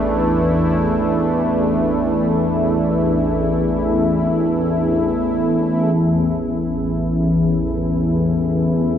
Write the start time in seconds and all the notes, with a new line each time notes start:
Already playing: A1 E2 E3 A3 D4 E4
5.96 A1 E2 A2
6.29 G3
7.08 D3
8.55 C4